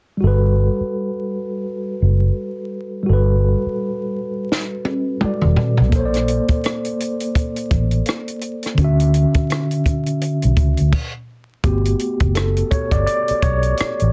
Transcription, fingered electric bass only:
0.23 G1
0.80 muted fingered electric bass stroke
2.02 F#1
3.09 G1
3.66 muted fingered electric bass stroke
5.23 muted fingered electric bass stroke
5.44 E1
5.80 B1
5.94 A#1
6.50 muted fingered electric bass stroke
7.72 A1
8.79 D2
9.36 muted fingered electric bass stroke
10.45 B1
10.58 C#2
10.80 D2
11.65 G1
12.22 F#1
12.73 muted fingered electric bass stroke
12.93 G1
13.30 muted fingered electric bass stroke
13.44 B1
13.81 muted fingered electric bass stroke
14.02 A1

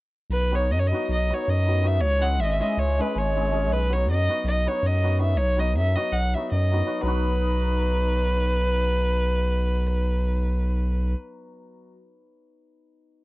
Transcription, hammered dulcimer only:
0.51 F#3 B3 D#4 F#4
0.91 F#3 B3 D#4 F#4
1.30 F#3 B3 D#4 F#4
1.67 F#3 B3 D#4 F#4
1.82 F#3 B3 D#4 F#4
2.19 G#3 C#4 E4 G#4
2.60 G#3 C#4 E4 G#4
2.98 G#3 C#4 E4 G#4
3.36 G#3 C#4 E4 G#4
3.51 G#3 C#4 E4 G#4
3.90 F#3 B3 D#4 F#4
4.29 F#3 B3 D#4 F#4
4.66 F#3 B3 D#4 F#4
5.03 F#3 B3 D#4 F#4
5.18 F#3 B3 D#4 F#4
5.56 F#3 B3 D#4 F#4
5.95 F#3 B3 D#4 F#4
6.35 F#3 B3 D#4 F#4
6.71 F#3 B3 D#4 F#4
6.86 F#3 B3 D#4 F#4
7.01 F#3 B3
7.06 D#4 F#4

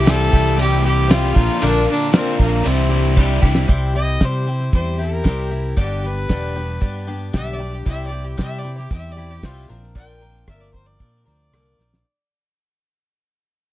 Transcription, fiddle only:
Already playing: G4
0.09 A4
0.61 G4
0.85 G4
1.11 F4
1.64 D4
1.90 D4
2.16 C4
2.40 A#3
2.67 C4
3.96 D#5
4.25 C5
4.75 C5
5.03 A#4
5.79 G4
6.07 B4
7.37 E5
7.54 D5
7.74 G4
7.89 E5
8.07 D5
8.24 G4
8.42 E5
8.59 D5
8.77 G4
8.94 E5
9.12 D5
9.31 G4
9.45 F4
9.97 G5
10.49 E5
10.61 D5
10.73 C5
10.87 D5
11.26 D5

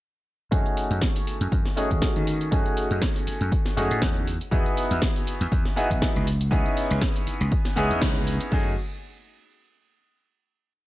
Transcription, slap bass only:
0.52 F#2
0.91 F#2
1.41 F#2
1.52 F#2
1.91 D#2
2.16 D#3
2.52 F#2
2.91 F#2
3.27 muted slap bass stroke
3.41 F#2
3.77 F#2
3.91 A2
4.02 E2
4.52 E2
4.91 E2
5.41 E2
5.52 E2
5.91 B1
6.16 C#2
6.52 C#2
6.91 C#2
7.27 muted slap bass stroke
7.41 C#2
7.77 C#2
7.91 E2
8.02 C#2
8.52 F#2

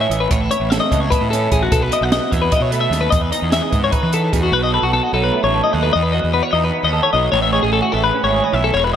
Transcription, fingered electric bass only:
0.10 A1
0.31 A1
0.60 A1
0.92 C#2
1.21 A2
1.52 A1
1.72 B1
2.01 B1
2.32 E2
2.60 B2
2.90 D#2
3.13 E2
3.42 E2
3.73 G#2
4.03 E3
4.34 E2
4.52 B1
4.82 B1
5.13 B1
5.43 A1
5.74 D#2
5.95 E2
6.24 E2
6.53 E2
6.83 D#2
7.13 B1
7.33 A1
7.63 A1
7.93 A1
8.23 G#1
8.53 B1
8.73 E1

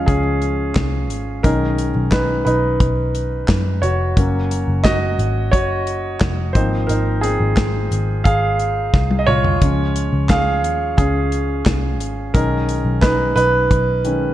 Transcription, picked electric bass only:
0.08 C#2
0.76 C2
1.10 G#1
1.44 B1
1.95 B1
2.46 B1
2.80 B1
3.49 F#2
3.82 F1
4.17 F#1
4.68 F#1
5.19 G#1
5.53 F#1
6.21 F1
6.55 G#1
6.89 G#1
7.40 G#1
7.92 G#1
8.26 G#1
8.94 C2
9.28 C2
9.62 C#2
10.13 C#2
10.64 D#2
10.98 C#2
11.66 C2
12.00 G#1
12.35 B1
12.85 B1
13.36 B1
13.71 B1

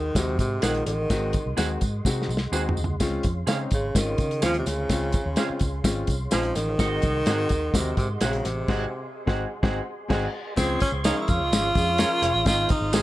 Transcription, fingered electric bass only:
Already playing: D#2
0.15 D#2
0.39 G#2
0.63 A#1
0.86 A1
1.10 G#1
1.46 C2
1.58 D#2
1.82 G#2
2.05 C3
2.28 C2
2.52 D#2
2.76 D2
3.00 C#2
3.24 F2
3.47 C#3
3.72 G#1
3.95 G#1
4.18 C#3
4.43 D#2
4.66 D2
4.90 C#2
5.26 D#2
5.50 muted fingered electric bass stroke
5.61 C#2
5.84 G#1
6.08 C2
6.33 A#1
6.56 A1
6.79 G#1
7.03 C2
7.26 G#2
7.50 D#2
7.74 D#2
7.98 G#2
8.21 A#1
8.45 A1
8.68 G#1
9.28 G#1
9.63 G#1
10.10 G#1
10.57 C#2
10.92 C#2
11.29 F2
11.40 C#2
11.51 G#1
11.75 F2
12.22 F1
12.34 A1
12.46 G#1
12.81 G#1

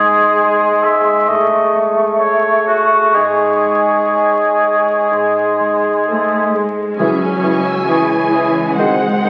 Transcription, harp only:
Already playing: G#2 G#3
0.38 C5
0.83 G#4
1.28 A2
1.74 G#3
2.20 C#5
2.67 G#4
3.16 G#2
3.65 G#3
4.14 C#5
4.63 G#4
5.11 G#2
5.60 G#3
6.07 C5
6.54 G#4
7.00 C#3
7.44 G#3
7.89 C#5
8.33 E5
8.79 D#3
9.25 D#4

